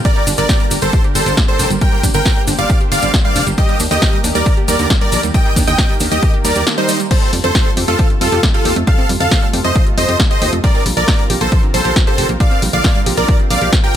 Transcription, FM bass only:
0.27 0.34 G1 medium
0.38 0.45 G1 medium
0.71 0.78 G1 medium
0.82 0.89 G1 medium
1.15 1.22 G1 medium
1.26 1.34 G1 medium
1.59 1.67 F1 loud
1.70 1.78 G1 medium
2.03 2.11 G1 loud
2.14 2.22 G1 medium
2.48 2.55 G1 loud
2.59 2.66 G1 medium
2.92 2.99 G1 medium
3.03 3.10 G1 medium
3.36 3.43 F1 medium
3.47 3.54 G1 medium
3.80 3.87 D#2 medium
3.91 3.98 D#2 medium
4.24 4.31 D#2 loud
4.35 4.42 D#2 medium
4.68 4.75 D#2 loud
4.79 4.86 D#2 medium
5.12 5.20 A#1 loud
5.23 5.31 D#2 medium
5.56 5.64 D#2 medium
5.67 5.75 D#2 medium
6.01 6.08 D#2 loud
6.12 6.19 D#2 medium
6.45 6.52 D#2 loud
6.56 6.63 D#2 medium
7.33 7.40 F2 medium
7.44 7.51 F2 medium
7.77 7.84 F2 loud
7.88 7.95 F2 medium
8.21 8.28 F2 loud
8.32 8.39 F2 medium
8.65 8.72 D#2 medium
8.76 8.84 F2 medium
9.09 9.17 F2 medium
9.20 9.28 F2 medium
9.53 9.61 F2 loud
9.65 9.72 F2 medium
9.98 10.05 F2 medium
10.09 10.16 F2 medium
10.42 10.49 D#2 loud
10.53 10.60 F2 medium
10.86 10.93 A#1 medium
10.97 11.04 A#1 medium
11.30 11.37 A#1 loud
11.41 11.48 A#1 medium
11.74 11.81 A#1 loud
11.85 11.92 A#1 medium
12.18 12.25 F1 loud
12.29 12.36 A#1 medium
12.62 12.70 A#1 medium
12.73 12.81 A#1 medium
13.06 13.14 A#1 loud
13.17 13.25 A#1 medium
13.51 13.58 A#1 medium
13.62 13.69 A#1 medium

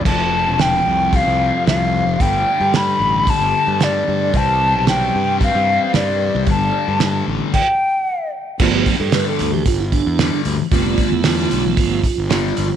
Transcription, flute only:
0.06 0.63 A5 medium
0.61 1.17 G5 medium
1.16 1.67 F5 medium
1.67 2.23 F5 medium
2.21 2.78 G5 medium
2.76 3.31 B5 medium
3.30 3.85 A5 loud
3.83 4.38 D5 medium
4.37 4.88 A5 medium
4.89 5.38 G5 medium
5.44 5.92 F5 medium
5.95 6.44 D5 medium
6.50 7.24 A5 medium
7.53 8.29 G5 loud

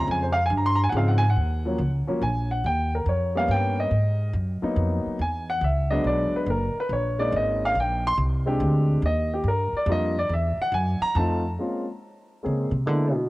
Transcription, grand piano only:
0.00 0.31 C#3 medium
0.00 0.32 F3 soft
0.00 0.32 G#3 soft
0.00 0.32 C4 medium
0.11 0.24 G#5 medium
0.23 0.37 C5 medium
0.33 0.42 F5 loud
0.46 0.52 G#5 medium
0.57 0.68 A#5 medium
0.66 0.80 C6 loud
0.75 0.77 A#5 medium
0.84 0.91 G#5 medium
0.89 0.94 F#5 medium
0.94 1.20 C#3 medium
0.94 1.20 F3 medium
0.94 1.20 G#3 medium
0.94 1.21 C4 medium
0.94 1.09 F5 medium
1.08 1.22 F#5 medium
1.18 1.27 G#5 loud
1.30 1.89 F#5 medium
1.65 1.78 F3 medium
1.65 1.78 F#3 medium
1.65 1.78 A#3 medium
1.65 1.78 C#4 medium
2.07 2.20 F3 medium
2.07 2.20 F#3 medium
2.07 2.20 A#3 medium
2.07 2.20 C#4 medium
2.22 2.50 G#5 medium
2.51 2.64 F#5 medium
2.66 2.93 G5 medium
2.95 3.07 A#4 medium
3.09 3.36 C#5 medium
3.35 3.89 G3 medium
3.35 3.89 A#3 medium
3.35 3.89 B3 medium
3.35 3.89 C#4 medium
3.35 3.50 F5 medium
3.51 3.78 G5 loud
3.80 4.31 D#5 medium
4.62 5.16 F#3 medium
4.62 5.16 A#3 medium
4.62 5.17 B3 medium
4.62 5.17 D#4 medium
5.22 5.48 G#5 medium
5.50 5.62 F#5 medium
5.64 5.91 E5 medium
5.91 6.44 F#3 medium
5.91 6.45 G#3 medium
5.91 6.45 B3 medium
5.91 6.45 D4 medium
5.91 6.04 D#5 medium
6.07 6.33 D5 medium
6.36 6.48 B4 medium
6.50 6.76 A#4 medium
6.80 6.92 B4 medium
6.93 7.19 C#5 medium
7.19 7.72 G#3 medium
7.19 7.73 A#3 medium
7.19 7.73 C#4 medium
7.19 7.73 D#4 medium
7.19 7.32 D5 medium
7.36 7.62 D#5 medium
7.65 7.77 F5 loud
7.80 8.05 G5 medium
8.07 8.14 C6 loud
8.46 8.99 G#3 medium
8.46 9.00 C4 medium
8.46 9.00 D4 medium
8.46 9.00 G4 medium
9.06 9.32 D#5 medium
9.34 9.46 G4 medium
9.48 9.74 A#4 medium
9.77 9.89 D5 medium
9.88 10.13 G3 medium
9.88 10.14 A#3 medium
9.88 10.14 D4 medium
9.88 10.14 F4 medium
9.88 10.17 D#5 medium
10.19 10.31 D5 medium
10.33 10.60 E5 medium
10.62 10.74 F#5 loud
10.74 11.01 G#5 medium
11.02 11.15 A#5 loud
11.16 11.42 A3 medium
11.16 11.42 C4 soft
11.16 11.42 D#4 medium
11.16 11.42 F4 medium
11.16 11.49 A5 medium
11.59 11.84 G#3 soft
11.59 11.84 A#3 soft
11.59 11.85 C4 soft
11.59 11.84 C#4 soft
11.59 11.85 F4 soft
12.43 12.69 G#3 soft
12.43 12.69 A#3 soft
12.43 12.69 C4 soft
12.43 12.69 C#4 soft
12.43 12.69 G#4 medium
12.86 13.11 G#3 soft
12.86 13.11 A#3 soft
12.86 13.12 B3 soft
12.86 13.12 D4 soft
12.86 13.12 E4 medium

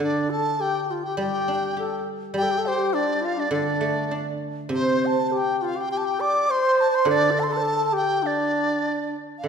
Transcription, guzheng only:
0.00 1.77 D3 medium
1.17 2.33 G3 medium
1.48 2.65 D4 medium
1.77 2.94 G4 soft
2.34 4.11 G3 medium
3.51 5.32 D3 medium
3.81 5.02 A3 medium
4.11 5.32 D4 soft
4.69 6.48 C3 medium
7.05 8.84 D3 medium
9.44 9.48 D3 soft

